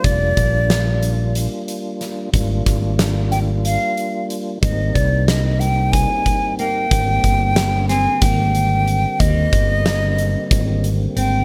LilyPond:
<<
  \new Staff \with { instrumentName = "Flute" } { \time 7/8 \key aes \lydian \tempo 4 = 92 d''2 r4. | r4. g''8 f''4 r8 | ees''8 d''8 ees''8 g''8 aes''4 g''8~ | g''4. aes''8 g''4. |
ees''2~ ees''8 r8 g''8 | }
  \new Staff \with { instrumentName = "Clean electric guitar" } { \time 7/8 \key aes \lydian r2. r8 | r2. r8 | r2. bes8~ | bes4. c'8 bes4. |
g2~ g8 r8 c'8 | }
  \new Staff \with { instrumentName = "Tonewheel organ" } { \time 7/8 \key aes \lydian <g bes d' f'>2.~ <g bes d' f'>8 | <g bes d' f'>2.~ <g bes d' f'>8 | <g bes c' ees'>2.~ <g bes c' ees'>8 | <d g bes c'>2.~ <d g bes c'>8~ |
<d g bes c'>2.~ <d g bes c'>8 | }
  \new Staff \with { instrumentName = "Fretless electric bass" } { \clef bass \time 7/8 \key aes \lydian f,,8 bes,,2 r4 | aes,,8 aes,,2 r4 | aes,,8 c,2 r4 | aes,,8 g,,4. aes,,4. |
ees,8 g,,4. aes,,4 aes,,8 | }
  \new DrumStaff \with { instrumentName = "Drums" } \drummode { \time 7/8 <hh bd>8 <hh bd>8 <hh sn>8 hh8 hh8 hh8 <hh sn>8 | <hh bd>8 <hh bd sn>8 <hh sn>8 hh8 hh8 hh8 hh8 | <hh bd>8 <hh bd>8 <hh sn>8 hh8 <hh bd>8 <hh bd>8 hh8 | <hh bd>8 <hh bd>8 <hh sn>8 <hh sn>8 <hh bd sn>8 hh8 hh8 |
<hh bd>8 <hh bd>8 <hh sn>8 hh8 <hh bd>8 hh8 hh8 | }
>>